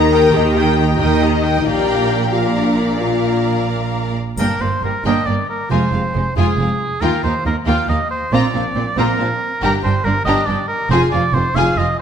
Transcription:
Already playing: double bass section D#2, cello section D#3, viola section G4 D#5, french horn section A#4, violin section A#5
0.13 viola section A#4 G5, violin section G5 D#6
0.34 double bass section D#2, cello section D#3, french horn section G4, viola section G4 D#5, violin section G5 A#5
0.55 french horn section G4, viola section A#4 G5, violin section G5 D#6
0.79 viola section G4 D#5, violin section A#5
0.98 double bass section D#2, cello section D#3, french horn section D#4, viola section A#4 G5, violin section D#5 G5 D#6
1.22 viola section G4 D#5, violin section A#5
1.44 viola section A#4 G5, violin section G5 D#6
1.65 double bass section A#1, cello section A#2, french horn section G4, viola section A#4 D5, violin section F5 G5 A#5
2.32 french horn section F4, viola section A#4 D5, violin section F5 A#5
2.55 french horn section D4, violin section D5
2.78 french horn section D4, violin section D5
3.00 french horn section F4, viola section A#4 D5, violin section F5 A#5
4.37 double bass section G1, cello section G2, viola section A#3, violin section D4 G5, oboe A#4, triangle
4.60 double bass section G1, cello section G2, viola section A#3, violin section A#3 D5, oboe C5
4.82 double bass section G1, cello section G2, violin section G3 A#4, viola section A#3, oboe A#4
5.05 double bass section G1, cello section G2, viola section A#3, violin section D4 G5, oboe D#5
5.26 double bass section G1, cello section G2, viola section A#3, violin section A#3 D5, oboe D5
5.50 oboe A#4
5.70 double bass section F1, cello section F2, viola section G#3, violin section F4 G#5, oboe C5
5.92 double bass section F1, cello section F2, viola section G#3, violin section C4 F5
6.14 double bass section F1, cello section F2, violin section G#3 C5, viola section G#3
6.37 double bass section F1, cello section F2, viola section G#3, violin section F4 G#5, oboe G#4
6.58 double bass section F1, cello section F2, viola section G#3, violin section C4 F5
7.01 cello section D#2, double bass section D#2, viola section A#3, violin section F4 G5, oboe A#4
7.24 double bass section D#2, cello section D#2, viola section A#3, violin section D#4 F5, oboe C5
7.45 double bass section D#2, cello section D#2, viola section A#3, violin section A#3 D#5, oboe A#4
7.67 double bass section D#2, cello section D#2, viola section A#3, violin section F4 G5, oboe F5
7.88 double bass section D#2, cello section D#2, viola section A#3, violin section D#4 F5, oboe D#5
8.11 oboe C5
8.32 double bass section A#1, cello section A#2, viola section C4, violin section F4 A#5, oboe D5
8.54 double bass section A#1, cello section A#2, viola section C4, violin section D4 F5
8.75 double bass section A#1, cello section A#2, viola section C4, violin section C4 D5
8.97 double bass section A#1, cello section A#2, viola section C4, violin section F4 A#5, oboe A#4
9.18 double bass section A#1, cello section A#2, viola section C4, violin section D4 F5
9.62 double bass section G1, cello section G2, viola section D4, violin section G4 A#5, oboe A#4
9.83 double bass section G1, cello section G2, viola section D4, violin section D4 G5, oboe C5
10.04 double bass section G1, cello section G2, violin section A#3 D5, viola section D4, oboe A#4
10.25 double bass section G1, cello section G2, viola section D4, violin section G4 A#5, oboe D#5
10.46 double bass section G1, cello section G2, violin section D4 G5, viola section D4, oboe D5
10.68 oboe A#4
10.90 double bass section F1, cello section F2, viola section F4, violin section G#4 G#5, oboe C5
11.12 double bass section F1, cello section F2, viola section F4, violin section F4 F5, oboe D5
11.34 double bass section F1, cello section F2, violin section C4 C5, viola section F4, oboe C5
11.55 double bass section F1, cello section F2, viola section F4, violin section G#4 G#5, oboe F5
11.77 double bass section F1, cello section F2, violin section F4 F5, viola section F4, oboe D#5

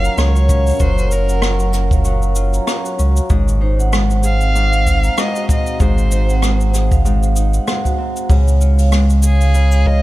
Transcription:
Already playing: harp F#3 C#4 F4 A#4, ambient pad F#3 C#4 A#4, vibraphone C#5 F5 F#5, violin F5
0.04 vibraphone A#5, cabasa
0.17 sub bass C#2, harp C#4, violin C#5, cross-stick, cabasa
0.36 vibraphone F#4, cabasa
0.49 harp C#4, kick, cabasa
0.67 cabasa
0.69 cabasa
0.71 cabasa
0.73 cabasa
0.74 cabasa
0.76 cabasa
0.78 harp F#3, cabasa
0.80 sub bass F#1, harp A#4, violin C5, kick, cabasa
0.98 cabasa
1.11 harp F4, violin A#4, vibraphone C#5, cabasa
1.29 vibraphone F#5, cabasa
1.42 harp C#4, cross-stick, cabasa
1.60 cabasa
1.73 harp A#4, cross-stick, cabasa
1.91 vibraphone F5, kick, cabasa
2.04 harp F#3, vibraphone F5, cabasa
2.22 cabasa
2.36 harp F4, cabasa
2.54 vibraphone A#5, cabasa
2.67 harp C#4, cross-stick, cabasa
2.86 vibraphone F#4, cabasa
2.98 sub bass C#2, harp C#4, cabasa
3.17 cabasa
3.30 sub bass G#1, harp G#2 G#4, ambient pad G#3 C4, kick, cabasa
3.48 cabasa
3.61 harp D#4, vibraphone C5
3.79 vibraphone F#5, cabasa
3.92 harp G#3, cross-stick, cabasa
4.10 cabasa
4.23 harp G#4, violin F5, cabasa
4.41 vibraphone F5, cabasa
4.55 harp G#2, cabasa
4.73 cabasa
4.86 harp D#4, kick, cabasa
5.04 vibraphone A#5, cabasa
5.17 harp G#3, violin D#5, cross-stick, cabasa
5.36 vibraphone F#4, cabasa
5.49 harp C4, violin D#5, kick, cabasa
5.67 cabasa
5.80 sub bass G#1, harp G#2 G#4, violin C5, kick, cabasa
5.98 cabasa
6.12 harp D#4, vibraphone C5, cabasa
6.29 vibraphone F#5, cabasa
6.42 harp G#3, cross-stick, cabasa
6.61 cabasa
6.74 harp G#4, cross-stick, cabasa
6.92 vibraphone F5, kick, cabasa
7.05 harp G#2, vibraphone F5, cabasa
7.23 cabasa
7.36 harp D#4, cabasa
7.54 vibraphone F#5, cabasa
7.67 harp G#3, vibraphone F#5, cross-stick, cabasa
7.85 vibraphone F#4, kick, cabasa
7.98 harp C4, vibraphone A#5
8.17 cabasa
8.29 sub bass C#2, harp C#3 G#4, ambient pad C#3 F4, kick, open hi-hat, cabasa
8.48 cabasa
8.61 harp F4, vibraphone C#5, cabasa
8.78 vibraphone F5, open hi-hat, cabasa
8.92 harp G#3, cross-stick, open hi-hat, cabasa
9.10 cabasa
9.23 harp G#4, violin G#4, cabasa
9.40 vibraphone F5, open hi-hat, cabasa
9.55 harp C#3, vibraphone F5, open hi-hat, cabasa
9.72 open hi-hat, cabasa
9.86 harp F4, violin D#5, kick

